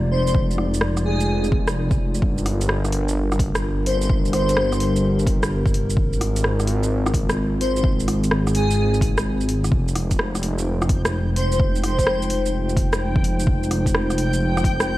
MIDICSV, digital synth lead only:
0, 0, Header, 1, 2, 480
1, 0, Start_track
1, 0, Tempo, 468750
1, 354, Time_signature, 4, 2, 24, 8
1, 15337, End_track
2, 0, Start_track
2, 0, Title_t, "Digital synth lead"
2, 0, Program_c, 0, 84
2, 116, Note_on_c, 0, 72, 87
2, 218, Note_off_c, 0, 72, 0
2, 273, Note_on_c, 0, 72, 75
2, 325, Note_off_c, 0, 72, 0
2, 1076, Note_on_c, 0, 68, 95
2, 1476, Note_off_c, 0, 68, 0
2, 3956, Note_on_c, 0, 72, 85
2, 4058, Note_off_c, 0, 72, 0
2, 4119, Note_on_c, 0, 72, 75
2, 4168, Note_off_c, 0, 72, 0
2, 4436, Note_on_c, 0, 72, 93
2, 5123, Note_off_c, 0, 72, 0
2, 7791, Note_on_c, 0, 72, 86
2, 7895, Note_off_c, 0, 72, 0
2, 7955, Note_on_c, 0, 72, 77
2, 8006, Note_off_c, 0, 72, 0
2, 8756, Note_on_c, 0, 68, 96
2, 9156, Note_off_c, 0, 68, 0
2, 11634, Note_on_c, 0, 72, 88
2, 11737, Note_off_c, 0, 72, 0
2, 11801, Note_on_c, 0, 72, 76
2, 11849, Note_off_c, 0, 72, 0
2, 12117, Note_on_c, 0, 72, 93
2, 12804, Note_off_c, 0, 72, 0
2, 15337, End_track
0, 0, End_of_file